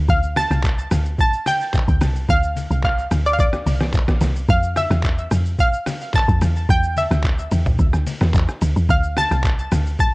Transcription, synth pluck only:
0.10 F5
0.37 A5
1.21 A5
1.47 G5
2.30 F5
2.85 F5
3.26 D5
3.33 F5
3.40 D5
4.50 F5
4.77 E5
5.60 F5
6.16 A5
6.70 G5
6.98 E5
8.90 F5
9.18 A5
10.00 A5

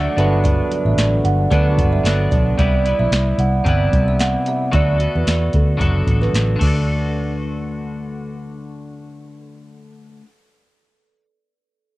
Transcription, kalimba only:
0.18 E5
0.44 D5
0.86 E5
1.25 F#5
1.51 D5
1.93 E5
2.31 D5
2.59 D5
2.99 E5
3.40 F#5
3.66 D5
4.08 E5
4.20 F#5
4.48 E5
4.75 D5
5.16 B4
5.55 A4
5.80 A4
6.22 B4
6.61 A4

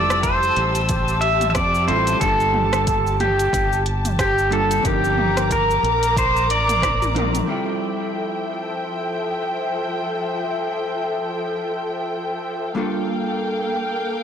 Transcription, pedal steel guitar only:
Already playing: D5
0.23 C5
1.21 E5
1.50 E5
1.55 D5
1.88 C5
2.21 A4
3.21 G4
4.21 G4
4.53 A4
4.86 G4
5.52 A#4
6.18 C5
6.51 D5

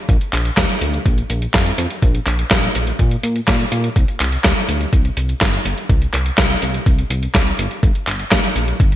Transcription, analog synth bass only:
0.09 A#1
0.33 A#1
0.57 D2
0.81 D2
1.06 A#1
1.30 A#1
1.54 F2
1.78 F2
2.02 A#1
2.27 A#1
2.51 A#1
2.75 A#1
2.99 A#2
3.23 A#2
3.48 A#2
3.72 A#2
3.96 C2
4.20 C2
4.44 D2
4.68 D2
4.93 C2
5.17 C2
5.41 G1
5.65 G1
5.89 C2
6.13 C2
6.38 C2
6.62 C2
6.86 C2
7.10 C2
7.35 C2
7.59 G1
7.83 G1
8.07 G1
8.31 A#1
8.56 A#1
8.80 G1

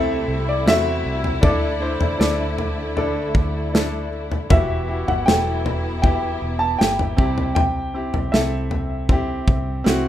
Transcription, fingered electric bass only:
Already playing: C2
0.28 C2
0.66 E2
1.05 C2
1.43 D2
2.00 E2
2.19 D2
3.35 D2
4.50 E1
5.08 G1
5.28 E1
6.42 E1
6.80 G1
7.18 C2
8.14 B1
8.33 C2
9.47 C2
9.86 C2

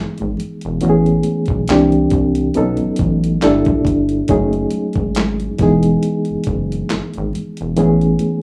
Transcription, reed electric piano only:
Already playing: E3 G#3 B3 D#4 G#4
0.81 E3 A3 B3 C#4 F#4
0.90 G#4
1.69 D#3 A#3 C4 D4 G4
1.75 E3
2.55 F#3 B3 C#4 D#4 A4
3.42 G3 A#3 D4 E4 A4
4.29 F#3 A3 C#4 D#4 G#4
5.58 E3 G#3 B3 D#4
5.63 G#4
7.77 E3 A3 B3 C#4 G#4

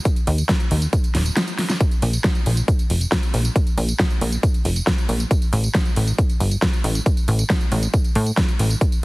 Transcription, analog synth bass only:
0.27 D#2
0.71 D#2
1.15 D#1
2.02 A#1
2.46 A#1
2.90 F1
3.34 A#1
3.78 A#1
4.21 A#1
4.65 F1
5.09 A#1
5.53 A1
5.96 A1
6.40 G1
6.84 A1
7.28 A1
7.72 A1
8.16 A2
8.59 A1

